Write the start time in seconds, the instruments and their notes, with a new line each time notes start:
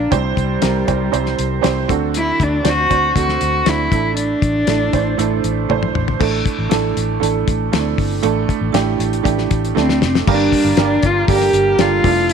Already playing: upright piano A#2 A#3 D4 F4 A4 A#4, cello D4
0.11 fingered electric bass C2, upright piano C3 C4 E4 G4 C5, cello G3, kick, closed hi-hat
0.37 fingered electric bass C2, kick, closed hi-hat
0.61 fingered electric bass C2, upright piano C4 E4 G4 A#4, snare, closed hi-hat
0.87 fingered electric bass C2, upright piano C4 E4 G4 C5, kick, closed hi-hat
1.11 fingered electric bass C2, upright piano C4 E4 G4 C5, closed hi-hat
1.26 snare
1.39 fingered electric bass C2, closed hi-hat
1.61 fingered electric bass C2, upright piano C4 E4 G4 C5, snare, closed hi-hat
1.88 fingered electric bass D2, upright piano D3 C4 D4 F#4 A4, kick, closed hi-hat
2.14 cello E4, closed hi-hat
2.40 fingered electric bass D2, cello D4, kick, closed hi-hat
2.63 fingered electric bass D2, upright piano C4 D4 F#4 C5, snare, closed hi-hat
2.69 cello F#4
2.89 fingered electric bass D2, upright piano C4 D4 F#4 C5, kick, closed hi-hat
3.14 fingered electric bass D2, upright piano C4 D4 F#4 A4, kick, closed hi-hat
3.19 cello F#4
3.29 snare
3.41 fingered electric bass D2, closed hi-hat
3.65 fingered electric bass D2, upright piano C4 D4 F#4 A4, cello E4, snare, closed hi-hat
3.92 fingered electric bass A1, upright piano A2 A3 D4 E4 A4, kick, closed hi-hat
4.17 cello D4, closed hi-hat
4.42 fingered electric bass A1, kick, closed hi-hat
4.67 fingered electric bass A1, upright piano A3 D4 E4 A4, snare, closed hi-hat
4.93 fingered electric bass A1, upright piano A3 D4 E4 C5, kick, closed hi-hat
5.18 fingered electric bass A1, upright piano A3 D4 E4 A4, closed hi-hat
5.44 fingered electric bass A1, closed hi-hat
5.69 fingered electric bass A1, upright piano A3 D4 E4 C5, high tom
5.83 mid tom
5.95 fingered electric bass A1, mid tom
6.08 floor tom
6.19 fingered electric bass A1, upright piano A2 A3 D4 E4 A4, kick, crash
6.46 kick, closed hi-hat
6.59 fingered electric bass A1
6.69 fingered electric bass A1, upright piano A3 D4 E4 A4, snare, closed hi-hat
6.97 fingered electric bass A1, closed hi-hat
7.20 fingered electric bass A1, upright piano A3 D4 E4 A4, closed hi-hat
7.48 fingered electric bass A1, kick, closed hi-hat
7.72 fingered electric bass D2, upright piano A3 C4 E4 A4, snare, closed hi-hat
7.79 upright piano D4
7.98 fingered electric bass G1, kick, open hi-hat
8.23 fingered electric bass A1, upright piano A2 A3 D4 E4 A4, closed hi-hat
8.49 kick, closed hi-hat
8.61 fingered electric bass A1
8.73 fingered electric bass A1, upright piano A3 D4 E4 G4, snare, closed hi-hat
8.99 fingered electric bass A1, closed hi-hat
9.13 closed hi-hat
9.23 fingered electric bass A1, upright piano A3 D4 E4 G4, kick, closed hi-hat
9.38 snare
9.51 fingered electric bass A1, kick, closed hi-hat
9.65 closed hi-hat
9.75 fingered electric bass D2, upright piano A3 D4 E4 A4, snare
9.80 cello C4
9.89 snare
10.02 fingered electric bass F1, cello C4, snare
10.15 snare
10.27 fingered electric bass G1, upright piano G2 G3 A#3 D4 G4 A#4, cello D4, kick, crash
10.52 kick, hi-hat pedal, open hi-hat
10.65 fingered electric bass G1
10.77 fingered electric bass G1, upright piano G3 A#3 D4 G4 A#4, snare, hi-hat pedal, open hi-hat
10.82 cello D4
11.03 fingered electric bass G1, cello F4, kick, hi-hat pedal, open hi-hat
11.28 fingered electric bass G1, upright piano G3 A#3 D4 G4 A4, cello G4, kick, hi-hat pedal, open hi-hat
11.35 upright piano A#4
11.41 snare
11.53 fingered electric bass G1, hi-hat pedal, open hi-hat
11.78 fingered electric bass G1, upright piano G3 A#3 D4 G4 A4, cello F4, snare, hi-hat pedal, open hi-hat
12.04 fingered electric bass F1, upright piano F3 A3 D4 E4 A4, kick, hi-hat pedal, open hi-hat
12.29 hi-hat pedal, open hi-hat